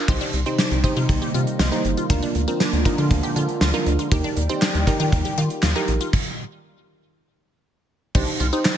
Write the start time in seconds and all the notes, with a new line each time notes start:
0.08 C2 C3 D#3 G3 A#3 D#4 G4 C5, kick, crash
0.21 D4, closed hi-hat
0.33 C2, closed hi-hat
0.46 C4 D#4 G4 C5, closed hi-hat
0.59 D4, snare
0.71 C2, closed hi-hat
0.84 D#4 G4 C5, kick, closed hi-hat
0.96 C3 F4, closed hi-hat
1.09 C2, kick, closed hi-hat
1.21 G4, closed hi-hat
1.34 C3 F4, closed hi-hat
1.47 closed hi-hat
1.59 C2 F4, snare
1.72 D#4 G4 C5, closed hi-hat
1.85 G1, closed hi-hat
1.97 F4, closed hi-hat
2.10 D2 D3 F3 G#3 D4 F4 A#4, kick, closed hi-hat
2.23 D4, closed hi-hat
2.35 D2, closed hi-hat
2.48 C4 D4 F4 A#4, closed hi-hat
2.60 D4, snare
2.73 D2, closed hi-hat
2.85 D4 D#4 F4 A#4, kick, closed hi-hat
2.98 D3 F4, closed hi-hat
3.11 D2, kick, closed hi-hat
3.23 G4, closed hi-hat
3.36 D3 F4, closed hi-hat
3.49 closed hi-hat
3.61 D2 F4, snare
3.74 D4 D#4 F4 A#4, closed hi-hat
3.86 D2, closed hi-hat
3.99 F4, closed hi-hat
4.11 D#2 D#3 G3 D#4 G4 A#4 D5, kick, closed hi-hat
4.24 D4, closed hi-hat
4.37 D#2, closed hi-hat
4.49 C4 D#4 G4 C5, closed hi-hat
4.62 D4, snare, clap
4.75 D#2, closed hi-hat
4.87 D#4 G4 A#4, kick, closed hi-hat
5.00 D#3 F4, closed hi-hat
5.12 D#2, kick, closed hi-hat
5.25 G4, closed hi-hat
5.38 D#3 F4, closed hi-hat
5.50 closed hi-hat
5.63 D#2 F4, snare, clap
5.76 D#4 G4 A#4, closed hi-hat
5.88 A#1, closed hi-hat
6.01 F4, closed hi-hat
6.13 kick, crash
8.15 C2 D#3 C4 D4 D#4 G4 C5, kick, crash
8.27 closed hi-hat
8.40 C2 F4, closed hi-hat
8.53 D#4 G4 C5, closed hi-hat
8.65 snare, clap